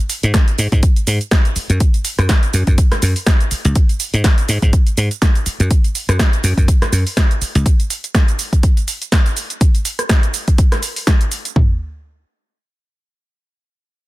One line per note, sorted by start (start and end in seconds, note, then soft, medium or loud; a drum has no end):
0.10 open hi-hat loud
0.10 shaker medium
0.23 0.31 G#2 loud
0.23 closed hi-hat soft
0.23 shaker soft
0.34 kick loud
0.34 snare loud
0.34 closed hi-hat medium
0.34 shaker soft
0.48 closed hi-hat soft
0.48 shaker soft
0.58 0.69 G#2 loud
0.58 open hi-hat loud
0.58 shaker medium
0.72 0.80 G#2 loud
0.72 kick medium
0.72 closed hi-hat soft
0.72 shaker soft
0.83 kick loud
0.83 closed hi-hat medium
0.83 shaker soft
0.96 closed hi-hat soft
0.96 shaker soft
1.07 1.18 G#2 medium
1.07 open hi-hat loud
1.07 shaker medium
1.21 closed hi-hat soft
1.21 shaker soft
1.31 kick loud
1.31 snare loud
1.31 closed hi-hat medium
1.31 shaker soft
1.45 closed hi-hat soft
1.45 shaker soft
1.56 muted slap bass stroke soft
1.56 open hi-hat loud
1.56 shaker medium
1.70 1.78 F#2 loud
1.70 closed hi-hat soft
1.70 shaker soft
1.80 kick loud
1.80 closed hi-hat medium
1.80 shaker soft
1.94 closed hi-hat soft
1.94 shaker soft
2.05 open hi-hat loud
2.05 shaker medium
2.19 2.27 F#2 loud
2.19 cross-stick medium
2.19 closed hi-hat soft
2.19 shaker soft
2.29 kick loud
2.29 snare loud
2.29 closed hi-hat medium
2.29 shaker soft
2.43 closed hi-hat soft
2.43 shaker soft
2.54 2.64 F#2 loud
2.54 open hi-hat loud
2.54 shaker medium
2.67 2.75 F#2 medium
2.67 kick medium
2.67 closed hi-hat soft
2.67 shaker soft
2.78 kick loud
2.78 closed hi-hat medium
2.78 shaker soft
2.92 muted slap bass stroke soft
2.92 cross-stick medium
2.92 snare soft
2.92 closed hi-hat soft
2.92 shaker soft
3.02 3.13 F#2 medium
3.02 open hi-hat loud
3.02 shaker medium
3.16 open hi-hat medium
3.16 shaker soft
3.26 kick loud
3.26 snare loud
3.26 closed hi-hat medium
3.26 shaker soft
3.40 closed hi-hat soft
3.40 shaker soft
3.51 muted slap bass stroke soft
3.51 open hi-hat loud
3.51 shaker medium
3.65 3.73 C#2 loud
3.65 closed hi-hat soft
3.65 shaker soft
3.75 kick loud
3.75 closed hi-hat medium
3.75 shaker soft
3.89 closed hi-hat soft
3.89 shaker soft
4.00 open hi-hat loud
4.00 shaker medium
4.14 4.22 G#2 loud
4.14 closed hi-hat soft
4.14 shaker soft
4.24 kick loud
4.24 snare loud
4.24 closed hi-hat medium
4.24 shaker soft
4.38 closed hi-hat soft
4.38 shaker soft
4.49 4.59 G#2 loud
4.49 open hi-hat loud
4.49 shaker medium
4.62 4.71 G#2 medium
4.62 kick medium
4.62 closed hi-hat soft
4.62 shaker soft
4.73 kick loud
4.73 closed hi-hat medium
4.73 shaker soft
4.87 closed hi-hat soft
4.87 shaker soft
4.97 5.08 G#2 medium
4.97 open hi-hat loud
4.97 shaker medium
5.11 closed hi-hat soft
5.11 shaker soft
5.22 kick loud
5.22 snare loud
5.22 closed hi-hat medium
5.22 shaker soft
5.35 closed hi-hat soft
5.35 shaker soft
5.46 muted slap bass stroke soft
5.46 open hi-hat loud
5.46 shaker medium
5.60 5.68 F#2 loud
5.60 closed hi-hat soft
5.60 shaker soft
5.71 kick loud
5.71 closed hi-hat medium
5.71 shaker soft
5.84 closed hi-hat soft
5.84 shaker soft
5.95 open hi-hat loud
5.95 shaker medium
6.09 6.17 F#2 loud
6.09 cross-stick medium
6.09 closed hi-hat soft
6.09 shaker soft
6.19 kick loud
6.19 snare loud
6.19 closed hi-hat loud
6.19 shaker soft
6.33 closed hi-hat soft
6.33 shaker soft
6.44 6.54 F#2 loud
6.44 open hi-hat loud
6.44 shaker medium
6.57 6.66 F#2 medium
6.57 kick medium
6.57 closed hi-hat soft
6.57 shaker soft
6.68 kick loud
6.68 closed hi-hat loud
6.68 shaker soft
6.82 muted slap bass stroke soft
6.82 cross-stick medium
6.82 snare soft
6.82 closed hi-hat soft
6.82 shaker soft
6.92 7.03 F#2 medium
6.92 open hi-hat loud
6.92 shaker medium
7.07 open hi-hat medium
7.07 shaker soft
7.17 kick loud
7.17 snare loud
7.17 closed hi-hat medium
7.17 shaker soft
7.31 closed hi-hat soft
7.31 shaker soft
7.41 muted slap bass stroke soft
7.41 open hi-hat loud
7.41 shaker medium
7.55 7.63 C#2 loud
7.55 closed hi-hat soft
7.55 shaker soft
7.66 kick loud
7.66 closed hi-hat loud
7.66 shaker soft
7.80 closed hi-hat soft
7.80 shaker soft
7.90 open hi-hat loud
7.90 shaker medium
8.04 closed hi-hat soft
8.04 shaker soft
8.15 kick loud
8.15 snare loud
8.15 closed hi-hat loud
8.15 shaker medium
8.28 closed hi-hat soft
8.28 shaker soft
8.39 open hi-hat loud
8.39 shaker medium
8.53 kick medium
8.53 closed hi-hat soft
8.53 shaker soft
8.63 kick loud
8.63 closed hi-hat loud
8.63 shaker soft
8.77 closed hi-hat soft
8.77 shaker soft
8.88 open hi-hat loud
8.88 shaker medium
9.02 closed hi-hat soft
9.02 shaker soft
9.12 kick loud
9.12 snare loud
9.12 closed hi-hat medium
9.12 shaker soft
9.26 closed hi-hat soft
9.26 shaker soft
9.37 open hi-hat loud
9.37 shaker medium
9.50 closed hi-hat soft
9.50 shaker soft
9.61 kick loud
9.61 closed hi-hat loud
9.61 shaker soft
9.75 closed hi-hat soft
9.75 shaker soft
9.85 open hi-hat loud
9.85 shaker medium
9.99 cross-stick medium
9.99 closed hi-hat soft
9.99 shaker soft
10.09 kick loud
10.09 snare loud
10.09 closed hi-hat loud
10.09 shaker soft
10.23 closed hi-hat soft
10.23 shaker soft
10.34 open hi-hat loud
10.34 shaker medium
10.48 kick medium
10.48 closed hi-hat soft
10.48 shaker soft
10.58 kick loud
10.58 closed hi-hat loud
10.58 shaker soft
10.72 cross-stick medium
10.72 snare soft
10.72 closed hi-hat soft
10.72 shaker soft
10.83 open hi-hat loud
10.83 shaker medium
10.96 open hi-hat medium
10.96 shaker soft
11.07 kick loud
11.07 snare loud
11.07 closed hi-hat loud
11.07 shaker soft
11.21 closed hi-hat soft
11.21 shaker soft
11.32 open hi-hat loud
11.32 shaker medium
11.45 closed hi-hat soft
11.45 shaker soft
11.56 kick loud
11.56 floor tom loud